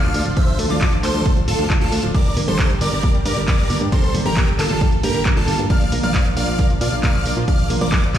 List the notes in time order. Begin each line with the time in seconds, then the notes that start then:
Already playing: D3 D4 F4 A4 D5 F5 F6
0.03 D2 F3, closed hi-hat
0.14 D2 A4, open hi-hat
0.26 D1 F3, closed hi-hat
0.37 F3 C5 E5 E6, kick, closed hi-hat
0.48 closed hi-hat
0.59 D2 A3, open hi-hat, mid tom
0.70 D2 F3 F4 D5 D6, closed hi-hat, mid tom
0.81 A4, kick, clap, closed hi-hat
0.92 F3, closed hi-hat
1.03 D2 F3 A4 C5 C6, clap, open hi-hat
1.14 D2, closed hi-hat, mid tom
1.26 A3, kick, closed hi-hat
1.37 F3, closed hi-hat
1.48 D1 F4 A4 A5, open hi-hat
1.59 D2 F3, closed hi-hat
1.70 F3, kick, clap, closed hi-hat
1.81 D2 F4 A4 A5, closed hi-hat
1.92 D2 A3, open hi-hat
2.03 D1 F3, closed hi-hat
2.14 G3 A#3 G4 A#4 D5 D6, kick, closed hi-hat
2.26 closed hi-hat
2.37 G1 A#3, open hi-hat, mid tom
2.48 G1 G3 A4 C5 C6, mid tom
2.59 A#4, kick, clap, closed hi-hat
2.70 G3, closed hi-hat
2.81 G1 G3 A#4 D5 D6, open hi-hat
2.92 G1, closed hi-hat
3.03 A#3, kick, closed hi-hat
3.14 G3, closed hi-hat
3.26 G2 A#4 D5 D6, open hi-hat
3.37 G1 G3, closed hi-hat
3.48 G3 A#4 D5 D6, kick, clap, closed hi-hat
3.59 G1, closed hi-hat
3.70 G1 A#3, open hi-hat
3.81 G2 G3, closed hi-hat
3.92 A4 A#4 C5 C6, kick, closed hi-hat
4.03 G3, closed hi-hat
4.14 G1 G3, open hi-hat, mid tom
4.25 G1 G4 A#4 A#5, closed hi-hat, mid tom
4.37 A#3, kick, clap, closed hi-hat
4.48 G3, closed hi-hat
4.59 G1 F4 A4 A#4 A5, clap, open hi-hat
4.70 G1 G3, closed hi-hat, mid tom
4.81 G3, kick, closed hi-hat
4.92 closed hi-hat
5.03 G2 A#3 G4 A#4 A#5, open hi-hat
5.14 G1 G3, closed hi-hat
5.26 A#4, kick, clap, closed hi-hat
5.37 G1 G3 F4 A4 A5, closed hi-hat
5.48 G1 G3, open hi-hat
5.59 G2, closed hi-hat
5.70 A#3 D4 F4 D5 F5 F6, kick, closed hi-hat
5.81 F3, closed hi-hat
5.92 A#1 A#4, open hi-hat, mid tom
6.03 A#1 F3 D5 F5 F6, closed hi-hat, mid tom
6.14 F3, kick, clap, closed hi-hat
6.26 closed hi-hat
6.37 A#1 A#3 D5 F5 F6, open hi-hat
6.48 A#1 F3, closed hi-hat
6.59 A#4, kick, closed hi-hat
6.70 F3, closed hi-hat
6.81 A#2 F3 D5 F5 F6, open hi-hat
6.92 A#1, closed hi-hat
7.03 A#3 D5 F5 F6, kick, clap, closed hi-hat
7.14 A#1 F3, closed hi-hat
7.26 A#1 A#4, open hi-hat
7.37 A#2 F3, closed hi-hat
7.48 F3 D5 F5 F6, kick, closed hi-hat
7.59 closed hi-hat
7.70 A#1 A#3, open hi-hat, mid tom
7.81 A#1 F3 A#4 D5 D6, closed hi-hat, mid tom
7.92 A#4, kick, clap, closed hi-hat
8.03 F3, closed hi-hat
8.14 A#1 F3 D5 F5 F6, kick, clap, open hi-hat